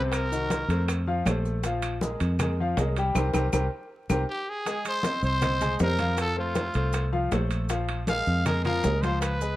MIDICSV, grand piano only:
0, 0, Header, 1, 2, 480
1, 0, Start_track
1, 0, Key_signature, -4, "minor"
1, 0, Tempo, 378788
1, 153, Time_signature, 4, 2, 24, 8
1, 12119, End_track
2, 0, Start_track
2, 0, Title_t, "Grand piano"
2, 0, Program_c, 0, 0
2, 0, Note_on_c, 0, 48, 88
2, 0, Note_on_c, 0, 60, 79
2, 0, Note_on_c, 0, 72, 87
2, 320, Note_off_c, 0, 60, 0
2, 321, Note_off_c, 0, 48, 0
2, 322, Note_off_c, 0, 72, 0
2, 404, Note_on_c, 0, 51, 79
2, 407, Note_on_c, 0, 63, 70
2, 409, Note_on_c, 0, 66, 73
2, 794, Note_off_c, 0, 51, 0
2, 795, Note_off_c, 0, 63, 0
2, 796, Note_off_c, 0, 66, 0
2, 885, Note_on_c, 0, 69, 70
2, 886, Note_on_c, 0, 57, 68
2, 891, Note_on_c, 0, 72, 66
2, 1274, Note_off_c, 0, 69, 0
2, 1275, Note_off_c, 0, 57, 0
2, 1277, Note_off_c, 0, 72, 0
2, 1358, Note_on_c, 0, 53, 88
2, 1361, Note_on_c, 0, 77, 88
2, 1363, Note_on_c, 0, 65, 88
2, 1553, Note_off_c, 0, 53, 0
2, 1555, Note_off_c, 0, 77, 0
2, 1556, Note_off_c, 0, 65, 0
2, 1615, Note_on_c, 0, 57, 74
2, 1616, Note_on_c, 0, 69, 71
2, 1621, Note_on_c, 0, 72, 71
2, 2000, Note_off_c, 0, 57, 0
2, 2000, Note_off_c, 0, 69, 0
2, 2003, Note_off_c, 0, 72, 0
2, 2093, Note_on_c, 0, 53, 80
2, 2096, Note_on_c, 0, 65, 80
2, 2098, Note_on_c, 0, 77, 77
2, 2478, Note_off_c, 0, 53, 0
2, 2480, Note_off_c, 0, 65, 0
2, 2482, Note_off_c, 0, 77, 0
2, 2563, Note_on_c, 0, 56, 68
2, 2570, Note_on_c, 0, 68, 67
2, 2572, Note_on_c, 0, 70, 66
2, 2953, Note_off_c, 0, 56, 0
2, 2957, Note_off_c, 0, 68, 0
2, 2958, Note_off_c, 0, 70, 0
2, 3058, Note_on_c, 0, 56, 63
2, 3068, Note_on_c, 0, 68, 72
2, 3069, Note_on_c, 0, 70, 66
2, 3245, Note_off_c, 0, 56, 0
2, 3251, Note_off_c, 0, 68, 0
2, 3251, Note_off_c, 0, 70, 0
2, 3297, Note_on_c, 0, 53, 86
2, 3300, Note_on_c, 0, 65, 88
2, 3308, Note_on_c, 0, 77, 87
2, 3484, Note_off_c, 0, 53, 0
2, 3486, Note_off_c, 0, 65, 0
2, 3491, Note_off_c, 0, 77, 0
2, 3529, Note_on_c, 0, 56, 75
2, 3538, Note_on_c, 0, 68, 73
2, 3538, Note_on_c, 0, 70, 71
2, 3720, Note_off_c, 0, 56, 0
2, 3724, Note_off_c, 0, 68, 0
2, 3725, Note_off_c, 0, 70, 0
2, 3771, Note_on_c, 0, 55, 84
2, 3784, Note_on_c, 0, 67, 90
2, 3788, Note_on_c, 0, 79, 87
2, 3961, Note_off_c, 0, 55, 0
2, 3968, Note_off_c, 0, 67, 0
2, 3971, Note_off_c, 0, 79, 0
2, 4011, Note_on_c, 0, 72, 96
2, 4014, Note_on_c, 0, 67, 99
2, 4017, Note_on_c, 0, 70, 96
2, 4158, Note_off_c, 0, 72, 0
2, 4159, Note_off_c, 0, 67, 0
2, 4161, Note_off_c, 0, 70, 0
2, 4240, Note_on_c, 0, 70, 93
2, 4244, Note_on_c, 0, 67, 99
2, 4245, Note_on_c, 0, 72, 96
2, 4391, Note_off_c, 0, 70, 0
2, 4394, Note_off_c, 0, 67, 0
2, 4394, Note_off_c, 0, 72, 0
2, 4472, Note_on_c, 0, 67, 96
2, 4474, Note_on_c, 0, 72, 91
2, 4476, Note_on_c, 0, 70, 91
2, 4626, Note_off_c, 0, 67, 0
2, 4628, Note_off_c, 0, 72, 0
2, 4629, Note_off_c, 0, 70, 0
2, 5195, Note_on_c, 0, 72, 95
2, 5198, Note_on_c, 0, 67, 97
2, 5200, Note_on_c, 0, 70, 100
2, 5348, Note_off_c, 0, 72, 0
2, 5350, Note_off_c, 0, 67, 0
2, 5351, Note_off_c, 0, 70, 0
2, 5908, Note_on_c, 0, 68, 79
2, 5909, Note_on_c, 0, 56, 79
2, 5910, Note_on_c, 0, 80, 73
2, 6304, Note_off_c, 0, 68, 0
2, 6305, Note_off_c, 0, 56, 0
2, 6305, Note_off_c, 0, 80, 0
2, 6393, Note_on_c, 0, 72, 69
2, 6394, Note_on_c, 0, 60, 67
2, 6405, Note_on_c, 0, 75, 70
2, 6787, Note_off_c, 0, 72, 0
2, 6788, Note_off_c, 0, 60, 0
2, 6794, Note_off_c, 0, 75, 0
2, 6869, Note_on_c, 0, 72, 64
2, 6874, Note_on_c, 0, 60, 69
2, 6877, Note_on_c, 0, 75, 69
2, 7068, Note_off_c, 0, 72, 0
2, 7071, Note_off_c, 0, 60, 0
2, 7072, Note_off_c, 0, 75, 0
2, 7112, Note_on_c, 0, 56, 96
2, 7118, Note_on_c, 0, 68, 93
2, 7118, Note_on_c, 0, 80, 88
2, 7310, Note_off_c, 0, 56, 0
2, 7313, Note_off_c, 0, 68, 0
2, 7313, Note_off_c, 0, 80, 0
2, 7359, Note_on_c, 0, 60, 75
2, 7361, Note_on_c, 0, 72, 72
2, 7368, Note_on_c, 0, 75, 71
2, 7554, Note_off_c, 0, 60, 0
2, 7555, Note_off_c, 0, 72, 0
2, 7559, Note_off_c, 0, 75, 0
2, 7584, Note_on_c, 0, 53, 79
2, 7588, Note_on_c, 0, 65, 80
2, 7589, Note_on_c, 0, 77, 80
2, 7982, Note_off_c, 0, 53, 0
2, 7984, Note_off_c, 0, 65, 0
2, 7985, Note_off_c, 0, 77, 0
2, 8061, Note_on_c, 0, 57, 70
2, 8065, Note_on_c, 0, 69, 71
2, 8067, Note_on_c, 0, 72, 77
2, 8460, Note_off_c, 0, 57, 0
2, 8462, Note_off_c, 0, 69, 0
2, 8464, Note_off_c, 0, 72, 0
2, 8554, Note_on_c, 0, 57, 66
2, 8555, Note_on_c, 0, 69, 73
2, 8564, Note_on_c, 0, 72, 69
2, 8948, Note_off_c, 0, 57, 0
2, 8948, Note_off_c, 0, 69, 0
2, 8954, Note_off_c, 0, 72, 0
2, 9027, Note_on_c, 0, 53, 87
2, 9032, Note_on_c, 0, 77, 92
2, 9037, Note_on_c, 0, 65, 87
2, 9227, Note_off_c, 0, 53, 0
2, 9230, Note_off_c, 0, 77, 0
2, 9233, Note_off_c, 0, 65, 0
2, 9276, Note_on_c, 0, 57, 78
2, 9277, Note_on_c, 0, 69, 76
2, 9278, Note_on_c, 0, 72, 70
2, 9669, Note_off_c, 0, 57, 0
2, 9669, Note_off_c, 0, 69, 0
2, 9670, Note_off_c, 0, 72, 0
2, 9749, Note_on_c, 0, 53, 81
2, 9755, Note_on_c, 0, 65, 78
2, 9759, Note_on_c, 0, 77, 76
2, 10145, Note_off_c, 0, 53, 0
2, 10148, Note_off_c, 0, 65, 0
2, 10151, Note_off_c, 0, 77, 0
2, 10245, Note_on_c, 0, 56, 70
2, 10247, Note_on_c, 0, 68, 68
2, 10251, Note_on_c, 0, 70, 66
2, 10634, Note_off_c, 0, 56, 0
2, 10636, Note_off_c, 0, 68, 0
2, 10638, Note_off_c, 0, 70, 0
2, 10729, Note_on_c, 0, 56, 71
2, 10730, Note_on_c, 0, 68, 71
2, 10732, Note_on_c, 0, 70, 74
2, 10920, Note_off_c, 0, 56, 0
2, 10921, Note_off_c, 0, 68, 0
2, 10922, Note_off_c, 0, 70, 0
2, 10967, Note_on_c, 0, 53, 96
2, 10970, Note_on_c, 0, 65, 91
2, 10972, Note_on_c, 0, 77, 99
2, 11159, Note_off_c, 0, 53, 0
2, 11161, Note_off_c, 0, 65, 0
2, 11162, Note_off_c, 0, 77, 0
2, 11201, Note_on_c, 0, 56, 70
2, 11210, Note_on_c, 0, 68, 73
2, 11212, Note_on_c, 0, 70, 79
2, 11395, Note_off_c, 0, 56, 0
2, 11401, Note_off_c, 0, 68, 0
2, 11402, Note_off_c, 0, 70, 0
2, 11455, Note_on_c, 0, 53, 82
2, 11457, Note_on_c, 0, 65, 85
2, 11462, Note_on_c, 0, 77, 80
2, 11841, Note_off_c, 0, 53, 0
2, 11842, Note_off_c, 0, 65, 0
2, 11845, Note_off_c, 0, 77, 0
2, 11926, Note_on_c, 0, 56, 76
2, 11930, Note_on_c, 0, 68, 70
2, 11930, Note_on_c, 0, 71, 77
2, 12119, Note_off_c, 0, 56, 0
2, 12119, Note_off_c, 0, 68, 0
2, 12119, Note_off_c, 0, 71, 0
2, 12119, End_track
0, 0, End_of_file